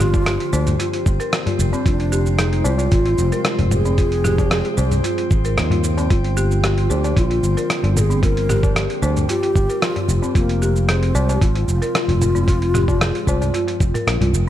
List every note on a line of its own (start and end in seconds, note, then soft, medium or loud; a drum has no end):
0.00 0.36 G1 medium
0.00 1.82 D3 medium
0.00 10.31 F3 medium
0.00 10.31 G3 medium
0.00 1.82 A#3 medium
0.00 14.49 C4 medium
0.00 1.06 F4 loud
0.00 0.13 G4 medium
0.00 1.84 G4 medium
0.00 14.49 C5 medium
0.00 cross-stick soft
0.00 mid tom medium
0.00 shaker medium
0.13 kick loud
0.13 tabla na medium
0.13 shaker soft
0.26 0.40 G4 medium
0.26 cross-stick medium
0.26 closed hi-hat medium
0.26 shaker soft
0.40 closed hi-hat soft
0.53 0.75 D2 loud
0.53 0.66 C5 medium
0.53 tabla na medium
0.53 shaker medium
0.67 closed hi-hat soft
0.67 tabla ge medium
0.67 shaker soft
0.80 0.92 F4 medium
0.80 closed hi-hat medium
0.80 shaker soft
0.93 1.05 F4 medium
0.93 closed hi-hat soft
1.06 1.17 G1 medium
1.06 kick loud
1.06 shaker medium
1.20 1.27 A#4 medium
1.20 closed hi-hat soft
1.20 shaker soft
1.33 cross-stick loud
1.33 closed hi-hat medium
1.33 shaker soft
1.46 1.58 F4 medium
1.46 closed hi-hat soft
1.46 tabla tin medium
1.46 tabla ge medium
1.59 1.70 F1 loud
1.59 shaker medium
1.73 1.80 C4 medium
1.73 tabla na medium
1.73 tabla tin medium
1.73 shaker soft
1.86 2.62 F1 medium
1.86 6.06 C3 medium
1.86 6.06 G#3 medium
1.86 2.41 D4 medium
1.86 8.19 F4 medium
1.86 1.99 F4 medium
1.86 kick loud
1.86 closed hi-hat medium
1.86 shaker soft
2.00 closed hi-hat soft
2.12 2.25 G4 loud
2.12 shaker medium
2.26 shaker soft
2.39 2.67 D#4 medium
2.39 2.52 G#4 medium
2.39 cross-stick loud
2.39 closed hi-hat medium
2.39 shaker soft
2.53 closed hi-hat soft
2.64 2.87 C2 loud
2.64 3.72 F4 loud
2.64 2.78 C5 medium
2.64 tabla na medium
2.64 tabla tin soft
2.64 shaker medium
2.78 closed hi-hat soft
2.78 tabla na medium
2.78 shaker soft
2.92 3.14 G#1 loud
2.92 3.05 F4 medium
2.92 kick loud
2.92 closed hi-hat medium
2.92 shaker soft
3.06 3.18 F4 medium
3.06 closed hi-hat soft
3.18 3.30 F1 medium
3.18 shaker medium
3.32 3.40 A#4 medium
3.32 closed hi-hat soft
3.32 tabla tin soft
3.32 shaker soft
3.45 cross-stick loud
3.45 closed hi-hat medium
3.45 shaker soft
3.58 4.61 F1 medium
3.58 3.71 F4 medium
3.58 closed hi-hat soft
3.58 tabla tin soft
3.58 tabla ge medium
3.71 5.27 G#4 loud
3.71 mid tom medium
3.71 shaker medium
3.85 3.93 C4 medium
3.85 tabla tin medium
3.85 shaker soft
3.98 4.11 F4 medium
3.98 kick loud
3.98 closed hi-hat medium
3.98 shaker soft
4.12 closed hi-hat soft
4.24 4.38 G4 loud
4.24 cross-stick soft
4.24 mid tom medium
4.24 shaker medium
4.38 kick loud
4.38 closed hi-hat soft
4.38 tabla na medium
4.38 shaker soft
4.51 4.64 G#4 medium
4.51 cross-stick loud
4.51 closed hi-hat medium
4.51 shaker soft
4.65 closed hi-hat soft
4.77 4.99 C2 medium
4.77 4.91 C5 medium
4.77 tabla na medium
4.77 shaker medium
4.91 closed hi-hat soft
4.91 tabla ge medium
4.91 shaker soft
5.04 5.17 F4 medium
5.04 closed hi-hat medium
5.04 shaker soft
5.18 5.30 F4 medium
5.18 closed hi-hat soft
5.31 5.59 G#1 medium
5.31 kick loud
5.31 shaker medium
5.45 5.52 A#4 medium
5.45 closed hi-hat soft
5.45 shaker soft
5.57 6.07 D#2 loud
5.57 cross-stick medium
5.57 closed hi-hat medium
5.57 shaker soft
5.70 5.83 F4 medium
5.70 closed hi-hat soft
5.70 tabla tin soft
5.70 tabla ge loud
5.84 shaker medium
5.97 6.05 C4 medium
5.97 closed hi-hat soft
5.97 tabla na medium
5.97 tabla tin medium
5.97 shaker soft
6.10 6.86 G1 medium
6.10 10.31 D3 medium
6.10 10.31 A#3 medium
6.10 6.24 F4 medium
6.10 6.60 F4 medium
6.10 kick loud
6.10 closed hi-hat medium
6.10 shaker soft
6.24 closed hi-hat soft
6.37 6.50 G4 medium
6.37 shaker medium
6.51 shaker soft
6.64 6.77 G4 medium
6.64 6.69 G4 medium
6.64 cross-stick medium
6.64 closed hi-hat medium
6.64 shaker soft
6.68 6.92 F4 medium
6.78 closed hi-hat soft
6.90 7.12 D2 medium
6.90 6.95 G#4 medium
6.90 7.03 C5 medium
6.90 tabla na medium
6.90 tabla tin soft
6.90 shaker medium
6.94 7.18 G4 medium
7.04 closed hi-hat soft
7.04 tabla na medium
7.04 shaker soft
7.17 7.38 A#1 loud
7.17 7.29 F4 medium
7.17 7.98 F4 loud
7.17 kick loud
7.17 closed hi-hat medium
7.17 shaker soft
7.30 7.43 F4 medium
7.30 closed hi-hat soft
7.43 7.54 G1 medium
7.43 shaker medium
7.57 7.64 A#4 medium
7.57 closed hi-hat soft
7.57 tabla tin soft
7.57 shaker soft
7.70 cross-stick loud
7.70 closed hi-hat medium
7.70 shaker soft
7.84 8.86 G1 medium
7.84 7.96 F4 medium
7.84 closed hi-hat soft
7.84 tabla tin medium
7.84 tabla ge medium
7.97 8.22 G#4 loud
7.97 8.01 A#4 medium
7.97 mid tom medium
7.97 shaker medium
8.10 8.17 C4 medium
8.10 tabla tin medium
8.10 shaker soft
8.23 8.36 F4 medium
8.23 10.33 G4 medium
8.23 8.99 A#4 loud
8.23 kick loud
8.23 closed hi-hat medium
8.23 shaker soft
8.37 closed hi-hat soft
8.49 8.63 G4 loud
8.49 cross-stick soft
8.49 mid tom medium
8.49 shaker medium
8.63 kick loud
8.63 tabla na medium
8.63 shaker soft
8.76 8.89 G4 medium
8.76 cross-stick medium
8.76 closed hi-hat medium
8.76 shaker soft
8.90 closed hi-hat soft
9.02 9.24 D2 loud
9.02 9.16 C5 medium
9.02 tabla na medium
9.02 shaker medium
9.17 closed hi-hat soft
9.17 tabla ge medium
9.17 shaker soft
9.29 9.42 F4 medium
9.29 9.84 G4 loud
9.29 closed hi-hat medium
9.29 shaker soft
9.43 9.55 F4 medium
9.43 closed hi-hat soft
9.56 9.67 G1 medium
9.56 kick medium
9.56 shaker medium
9.69 9.77 A#4 medium
9.69 closed hi-hat soft
9.69 shaker soft
9.82 10.23 F4 loud
9.82 cross-stick loud
9.82 closed hi-hat medium
9.82 shaker soft
9.96 10.08 F4 medium
9.96 closed hi-hat soft
9.96 tabla tin medium
9.96 tabla ge medium
10.09 10.20 F1 loud
10.09 shaker medium
10.22 10.30 C4 medium
10.22 tabla na soft
10.22 tabla tin medium
10.22 shaker soft
10.35 11.11 F1 medium
10.35 14.49 C3 medium
10.35 14.49 F3 medium
10.35 14.49 G#3 medium
10.35 10.90 A#3 loud
10.35 14.49 F4 medium
10.35 10.49 F4 medium
10.35 kick loud
10.35 closed hi-hat medium
10.35 shaker soft
10.49 closed hi-hat soft
10.62 10.75 G4 loud
10.62 shaker medium
10.76 shaker soft
10.89 11.34 C4 loud
10.89 11.02 G#4 medium
10.89 cross-stick medium
10.89 closed hi-hat medium
10.89 shaker soft
11.03 closed hi-hat soft
11.15 11.37 C2 loud
11.15 11.28 C5 medium
11.15 tabla na medium
11.15 tabla tin soft
11.15 shaker medium
11.29 closed hi-hat soft
11.29 tabla na medium
11.29 shaker soft
11.35 11.43 G4 medium
11.41 11.63 G#1 loud
11.41 11.54 F4 medium
11.41 14.07 F4 loud
11.41 kick loud
11.41 closed hi-hat medium
11.41 shaker soft
11.55 11.67 F4 medium
11.55 closed hi-hat soft
11.68 11.79 F1 medium
11.68 shaker medium
11.82 11.89 A#4 medium
11.82 closed hi-hat soft
11.82 tabla tin soft
11.82 shaker soft
11.95 cross-stick loud
11.95 closed hi-hat medium
11.95 shaker soft
12.08 13.10 F1 medium
12.08 12.21 F4 medium
12.08 closed hi-hat soft
12.08 tabla tin medium
12.08 tabla ge medium
12.22 mid tom medium
12.22 shaker medium
12.35 12.42 C4 medium
12.35 tabla tin medium
12.35 shaker soft
12.48 12.61 F4 medium
12.48 kick loud
12.48 closed hi-hat medium
12.48 shaker soft
12.62 closed hi-hat soft
12.74 12.87 G4 loud
12.74 cross-stick soft
12.74 mid tom medium
12.74 shaker medium
12.88 kick loud
12.88 tabla na medium
12.88 shaker soft
13.01 13.14 G#4 medium
13.01 cross-stick loud
13.01 closed hi-hat medium
13.01 mid tom medium
13.01 shaker soft
13.15 closed hi-hat soft
13.27 13.49 C2 loud
13.27 13.41 C5 medium
13.27 kick medium
13.27 tabla na medium
13.27 tabla tin soft
13.27 shaker medium
13.41 closed hi-hat soft
13.41 tabla na medium
13.41 tabla ge medium
13.41 shaker soft
13.54 13.67 F4 medium
13.54 closed hi-hat medium
13.54 shaker soft
13.68 13.80 F4 medium
13.68 closed hi-hat soft
13.80 13.92 F1 medium
13.80 kick loud
13.80 tabla tin soft
13.80 shaker medium
13.94 14.02 A#4 medium
13.94 closed hi-hat soft
13.94 mid tom medium
13.94 shaker soft
14.07 14.18 A#1 medium
14.07 cross-stick loud
14.07 closed hi-hat medium
14.07 shaker soft
14.21 14.31 C2 medium
14.21 14.33 F4 medium
14.21 closed hi-hat soft
14.21 tabla tin medium
14.21 tabla ge medium
14.33 14.49 F1 loud
14.33 shaker medium